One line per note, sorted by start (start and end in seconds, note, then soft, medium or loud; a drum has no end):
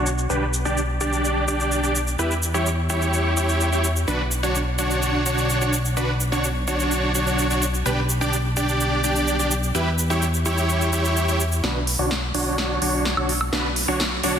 0.00 0.27 B1 medium
0.06 shaker medium
0.18 shaker soft
0.30 2.16 B1 medium
0.30 0.44 D4 loud
0.30 0.44 G4 medium
0.30 0.44 B4 loud
0.30 shaker soft
0.54 shaker medium
0.65 0.80 D4 loud
0.65 0.80 G4 medium
0.65 0.80 D5 loud
0.65 shaker soft
0.77 shaker soft
1.01 1.45 D4 medium
1.01 1.45 G4 medium
1.01 1.45 D5 medium
1.01 shaker medium
1.13 shaker soft
1.25 shaker soft
1.48 1.81 D4 medium
1.48 1.81 G4 medium
1.48 1.81 D5 loud
1.48 shaker medium
1.60 shaker soft
1.72 shaker soft
1.83 1.98 D4 medium
1.83 1.98 G4 medium
1.83 1.98 D5 medium
1.83 shaker soft
1.95 shaker medium
2.07 shaker soft
2.19 4.05 E2 medium
2.19 2.33 E4 medium
2.19 2.33 G4 medium
2.19 2.33 B4 loud
2.19 shaker soft
2.31 shaker soft
2.43 shaker medium
2.54 2.69 E4 medium
2.54 2.69 G4 medium
2.54 2.69 C#5 loud
2.54 shaker soft
2.66 shaker soft
2.90 3.34 E4 medium
2.90 3.34 G4 medium
2.90 3.34 C#5 medium
2.90 shaker medium
3.02 shaker soft
3.14 shaker soft
3.37 3.69 E4 medium
3.37 3.69 G4 medium
3.37 3.69 C#5 medium
3.37 shaker medium
3.49 shaker soft
3.61 shaker soft
3.72 3.87 E4 medium
3.72 3.87 G4 medium
3.72 3.87 C#5 medium
3.72 shaker soft
3.84 shaker medium
3.96 shaker soft
4.08 7.83 B1 medium
4.08 4.22 D4 loud
4.08 4.22 F#4 medium
4.08 4.22 B4 loud
4.08 shaker soft
4.32 shaker medium
4.43 4.57 D4 loud
4.43 4.57 F#4 medium
4.43 4.57 C#5 loud
4.43 shaker soft
4.55 shaker soft
4.78 5.23 D4 medium
4.78 5.23 F#4 medium
4.78 5.23 C#5 medium
4.78 shaker medium
4.91 shaker soft
5.03 shaker soft
5.26 5.58 D4 medium
5.26 5.58 F#4 medium
5.26 5.58 C#5 loud
5.26 shaker medium
5.38 shaker soft
5.50 shaker soft
5.61 5.76 D4 medium
5.61 5.76 F#4 medium
5.61 5.76 C#5 medium
5.61 shaker soft
5.73 shaker medium
5.85 shaker soft
5.97 6.11 D4 loud
5.97 6.11 F#4 medium
5.97 6.11 B4 loud
5.97 shaker soft
6.21 shaker medium
6.32 6.46 D4 loud
6.32 6.46 F#4 medium
6.32 6.46 C#5 loud
6.32 shaker soft
6.44 shaker soft
6.68 7.12 D4 medium
6.68 7.12 F#4 medium
6.68 7.12 C#5 medium
6.68 shaker medium
6.80 shaker soft
6.91 shaker soft
7.15 7.47 D4 medium
7.15 7.47 F#4 medium
7.15 7.48 C#5 loud
7.15 shaker medium
7.27 shaker soft
7.39 shaker soft
7.50 7.65 D4 medium
7.50 7.65 F#4 medium
7.50 7.65 C#5 medium
7.50 shaker soft
7.62 shaker medium
7.74 shaker soft
7.86 9.72 B1 medium
7.86 8.00 D4 loud
7.86 8.00 G4 medium
7.86 8.00 B4 loud
7.86 shaker soft
8.10 shaker medium
8.21 8.35 D4 loud
8.21 8.35 G4 medium
8.21 8.35 D5 loud
8.21 shaker soft
8.33 shaker soft
8.57 9.01 D4 medium
8.57 9.01 G4 medium
8.57 9.01 D5 medium
8.57 shaker medium
8.69 shaker soft
8.80 shaker soft
9.04 9.36 D4 medium
9.04 9.36 G4 medium
9.04 9.36 D5 medium
9.04 shaker medium
9.16 shaker soft
9.28 shaker soft
9.39 9.54 D4 medium
9.39 9.54 G4 medium
9.39 9.54 D5 medium
9.39 shaker soft
9.51 shaker medium
9.63 shaker soft
9.75 11.61 E2 medium
9.75 9.89 E4 loud
9.75 9.89 G4 medium
9.75 9.89 B4 loud
9.75 shaker soft
9.99 shaker medium
10.10 10.24 E4 loud
10.10 10.24 G4 medium
10.10 10.24 C#5 loud
10.10 shaker soft
10.22 shaker soft
10.34 shaker soft
10.46 10.90 E4 medium
10.46 10.90 G4 medium
10.46 10.90 C#5 medium
10.46 shaker medium
10.58 shaker soft
10.69 shaker soft
10.81 shaker soft
10.93 11.25 E4 medium
10.93 11.25 G4 medium
10.93 11.25 C#5 loud
10.93 shaker medium
11.05 shaker soft
11.17 shaker soft
11.28 11.43 E4 medium
11.28 11.43 G4 medium
11.28 11.43 C#5 medium
11.28 shaker soft
11.40 shaker medium
11.52 shaker soft
11.64 11.97 B1 loud
11.64 11.78 D4 loud
11.64 11.78 F#4 medium
11.64 11.78 B4 loud
11.64 snare soft
11.87 open hi-hat loud
11.99 12.32 B1 loud
11.99 12.13 D4 loud
11.99 12.13 F#4 medium
11.99 12.13 C#5 loud
12.11 snare medium
12.34 12.79 B1 loud
12.34 12.79 D4 medium
12.34 12.79 F#4 medium
12.34 12.79 C#5 medium
12.34 open hi-hat medium
12.58 snare medium
12.82 13.15 B1 medium
12.82 13.14 D4 medium
12.82 13.14 F#4 medium
12.82 13.14 C#5 loud
12.82 open hi-hat loud
13.05 snare medium
13.17 13.50 B1 loud
13.17 13.31 D4 medium
13.17 13.31 F#4 medium
13.17 13.31 C#5 medium
13.17 high woodblock medium
13.29 open hi-hat medium
13.41 high woodblock medium
13.53 13.86 B1 loud
13.53 13.67 D4 loud
13.53 13.67 F#4 medium
13.53 13.67 B4 loud
13.53 snare medium
13.76 open hi-hat loud
13.88 14.21 B1 loud
13.88 14.02 D4 loud
13.88 14.02 F#4 medium
13.88 14.02 C#5 loud
14.00 snare medium
14.23 14.39 B1 medium
14.23 14.39 D4 medium
14.23 14.39 F#4 medium
14.23 14.39 C#5 medium
14.23 open hi-hat medium